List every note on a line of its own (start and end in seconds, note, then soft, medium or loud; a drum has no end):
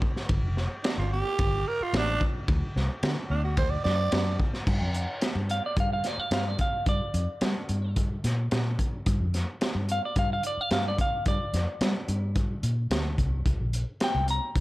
0.02 kick medium
0.16 snare soft
0.29 0.41 G1 loud
0.29 kick loud
0.29 ride bell medium
0.43 0.67 F1 medium
0.57 snare soft
0.83 0.97 D4 medium
0.83 snare loud
0.83 ride bell medium
0.98 1.21 G1 medium
0.98 1.11 F4 medium
1.13 1.69 G4 loud
1.39 1.63 G1 medium
1.39 kick loud
1.39 ride bell medium
1.68 1.84 A#4 loud
1.80 1.99 F4 loud
1.80 muted fingered electric bass stroke soft
1.93 2.17 A1 medium
1.93 2.22 D4 loud
1.93 snare loud
1.93 ride bell medium
2.21 kick medium
2.48 2.60 D2 loud
2.48 kick loud
2.48 ride bell medium
2.76 2.88 C2 medium
2.76 snare soft
3.03 3.15 D3 loud
3.03 snare loud
3.03 ride bell medium
3.30 3.78 D2 loud
3.30 3.43 D4 loud
3.44 3.57 F#4 medium
3.57 3.72 C5 loud
3.57 kick loud
3.57 ride bell medium
3.70 3.84 D5 medium
3.84 4.09 F#2 loud
3.84 4.38 D5 loud
3.84 snare soft
4.12 4.36 F#2 medium
4.12 snare loud
4.12 ride bell medium
4.40 kick medium
4.54 snare soft
4.67 4.79 G2 loud
4.67 kick loud
4.67 crash medium
4.81 5.05 F2 medium
4.94 closed hi-hat medium
5.21 snare loud
5.21 closed hi-hat medium
5.35 5.59 G2 medium
5.49 5.64 F5 medium
5.49 closed hi-hat medium
5.66 5.78 D5 medium
5.77 6.01 G2 medium
5.77 5.92 F5 medium
5.77 kick loud
5.77 closed hi-hat medium
5.93 6.07 F5 medium
6.04 6.20 D5 medium
6.04 snare soft
6.04 closed hi-hat medium
6.18 6.32 F5 medium
6.18 muted fingered electric bass stroke soft
6.31 6.55 G2 medium
6.31 6.48 F5 medium
6.31 snare loud
6.31 closed hi-hat medium
6.48 6.60 D5 medium
6.59 6.87 F5 medium
6.59 kick medium
6.59 closed hi-hat medium
6.86 6.99 G2 medium
6.86 7.94 D5 medium
6.86 kick loud
6.86 closed hi-hat medium
7.14 7.26 F2 loud
7.14 closed hi-hat medium
7.41 7.53 G3 medium
7.41 snare loud
7.41 closed hi-hat medium
7.69 8.17 G2 medium
7.69 closed hi-hat medium
7.96 kick loud
7.96 closed hi-hat medium
8.24 8.48 A#2 medium
8.24 snare soft
8.24 closed hi-hat medium
8.51 8.76 A#2 medium
8.51 snare loud
8.51 closed hi-hat medium
8.79 kick medium
8.79 closed hi-hat medium
9.06 9.18 G2 loud
9.06 kick loud
9.06 closed hi-hat medium
9.20 9.44 F2 medium
9.34 snare soft
9.34 closed hi-hat medium
9.61 snare loud
9.61 closed hi-hat medium
9.75 9.99 G2 medium
9.89 10.03 F5 medium
9.89 closed hi-hat medium
10.05 10.17 D5 medium
10.16 10.40 G2 medium
10.16 10.31 F5 medium
10.16 kick loud
10.16 closed hi-hat medium
10.33 10.45 F5 medium
10.43 10.61 D5 medium
10.43 closed hi-hat medium
10.57 10.72 F5 medium
10.57 muted fingered electric bass stroke soft
10.71 10.95 G2 medium
10.71 10.85 F5 medium
10.71 snare loud
10.71 closed hi-hat medium
10.88 11.00 D5 medium
10.98 11.26 F5 medium
10.98 kick medium
10.98 closed hi-hat medium
11.26 11.38 G2 medium
11.26 12.34 D5 medium
11.26 kick loud
11.26 closed hi-hat medium
11.53 11.65 F2 medium
11.53 snare soft
11.53 closed hi-hat medium
11.81 11.93 G3 medium
11.81 snare loud
11.81 closed hi-hat medium
12.08 12.56 G2 medium
12.08 closed hi-hat medium
12.36 kick loud
12.36 closed hi-hat medium
12.63 12.87 A#2 medium
12.63 closed hi-hat medium
12.91 13.15 D2 medium
12.91 snare loud
12.91 closed hi-hat medium
13.18 13.43 C2 medium
13.18 kick medium
13.18 closed hi-hat medium
13.46 13.58 C2 loud
13.46 kick loud
13.46 closed hi-hat medium
13.60 13.83 A#1 medium
13.73 closed hi-hat medium
14.00 14.29 G5 medium
14.00 snare loud
14.00 closed hi-hat medium
14.15 14.38 C2 medium
14.28 14.60 A#5 medium
14.28 closed hi-hat medium
14.56 14.60 C2 medium
14.56 kick loud
14.56 closed hi-hat medium